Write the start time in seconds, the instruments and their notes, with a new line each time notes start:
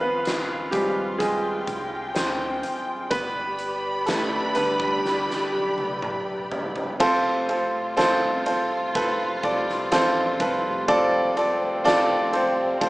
Already playing: sub bass G#1, grand piano F3 G#3 B3 C4, string section F4 F5
0.00 grand piano B3 B4
0.25 snare, closed hi-hat
0.71 sub bass G#1, grand piano F3 G3 G#3 C4 G4, kick, closed hi-hat
1.18 grand piano G#3 G#4, string section G5, kick, closed hi-hat
1.67 sub bass C2, kick, closed hi-hat
2.15 sub bass D2, grand piano C4 C5, snare, closed hi-hat
2.63 sub bass D1, closed hi-hat
3.10 sub bass G1, grand piano B3 B4, string section G4 B4 D5 B5, kick, closed hi-hat
3.59 closed hi-hat
4.06 grand piano A3 A4, snare, closed hi-hat
4.55 grand piano D3 G3 B3 B4, closed hi-hat
4.80 kick
5.05 snare
5.30 snare
5.53 sub bass B1
5.78 high tom
6.02 mid tom
6.52 floor tom
6.76 floor tom
7.00 sub bass F1, string section C3 F3 A3 F4, grand piano C4 F4 A4 C5, kick, crash
7.49 grand piano C4 F4 A4 C5, ride
7.97 grand piano C4 F4 A4 C5, snare, ride
8.46 sub bass F1, grand piano C4 F4 A4 C5, ride
8.95 grand piano C4 F4 A4 B4, kick, ride
9.43 sub bass C2, grand piano C4 F4 A4 D5, kick, ride
9.69 snare
9.92 sub bass A1, grand piano C4 F4 A4 C5, snare, ride
10.40 sub bass C2, grand piano C4 F4 A4 B4, kick, ride
10.88 sub bass F1, grand piano C4 F4 A4 D5, string section C4, kick, ride
11.37 grand piano C4 F4 A4 D5, ride
11.84 grand piano C4 F4 A4 D5, snare, ride
12.32 grand piano C4 F4 A4 C5, ride
12.80 grand piano C4 F4 A4 C5, kick, ride